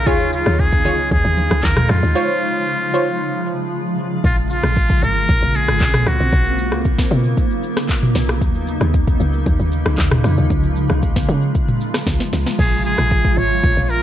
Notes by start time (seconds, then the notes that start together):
Already playing: C#3 D#4
0.06 D#2 F3 G#3 F4 G#4 C#5, kick, low conga, shaker
0.20 shaker
0.33 F4, shaker
0.46 D#2, cross-stick, shaker
0.59 G#4, kick, shaker
0.72 kick, shaker
0.85 C#2 F4 G#4 C#5, low conga, shaker
0.98 shaker
1.11 D#2 G#4, kick, low conga, shaker
1.25 D#2, shaker
1.37 high conga, shaker
1.51 C#2, cross-stick, high conga, shaker
1.63 D#2 A#4, kick, clap, low conga, shaker
1.76 cross-stick, mid tom, high conga, shaker
1.89 F2 F4, cross-stick, open hi-hat, high conga, shaker
2.03 D#2, shaker
2.15 C3 F3 G#3 F4 C5 C#5
2.94 F4 C5 C#5
4.24 A#1 C#3 G#3 A#3 C4 F4, kick, shaker
4.37 shaker
4.50 F4, shaker
4.64 A#1, cross-stick, shaker
4.76 kick, shaker
4.90 kick, shaker
5.02 G#1 A#4, shaker
5.16 shaker
5.29 A#1, kick, shaker
5.42 A#1, shaker
5.55 G#4, shaker
5.68 G#1, cross-stick, shaker
5.81 A#1, kick, clap, shaker
5.94 cross-stick, mid tom, shaker
6.07 C#2 F#4, cross-stick, open hi-hat, shaker
6.20 A#1, shaker
6.33 B1 F#3 B3 D#4, kick, shaker
6.46 shaker
6.59 shaker
6.72 C#2, cross-stick, shaker
6.85 kick, shaker
6.99 kick, snare, shaker
7.11 B2, shaker
7.24 shaker
7.37 kick, shaker
7.51 shaker
7.63 shaker
7.77 cross-stick, snare, shaker
7.89 kick, clap, shaker
8.03 mid tom, shaker
8.15 B1, snare, open hi-hat, shaker
8.29 cross-stick, shaker
8.42 D#2 F3 G#3, kick, shaker
8.55 shaker
8.67 shaker
8.81 D#2, cross-stick, shaker
8.94 kick, shaker
9.07 kick, shaker
9.20 C#2, shaker
9.33 shaker
9.46 D#2, kick, shaker
9.59 D#2, shaker
9.72 shaker
9.86 C#2, cross-stick, shaker
9.98 D#2, kick, clap, shaker
10.11 cross-stick, mid tom, shaker
10.24 F2, cross-stick, open hi-hat, shaker
10.38 D#2, shaker
10.50 C#2 C3 F3 F4, kick, shaker
10.63 shaker
10.76 shaker
10.90 C#2, cross-stick, shaker
11.02 kick, shaker
11.16 kick, snare, shaker
11.28 C#3, shaker
11.42 shaker
11.55 kick, shaker
11.68 mid tom, shaker
11.81 shaker
11.94 cross-stick, snare, shaker
12.07 C#2, kick, snare, shaker
12.20 snare, shaker
12.33 C#2, snare, open hi-hat, shaker
12.46 snare, shaker
12.59 A#1 C#3 A#3 G#4, kick, crash
12.72 shaker
12.85 G#4, shaker
12.98 A#1, cross-stick, shaker
13.11 kick, shaker
13.25 kick, shaker
13.37 G#1 C#5, shaker
13.50 shaker
13.64 A#1, kick, shaker
13.77 A#1, shaker
13.83 C#5
13.89 A#4, shaker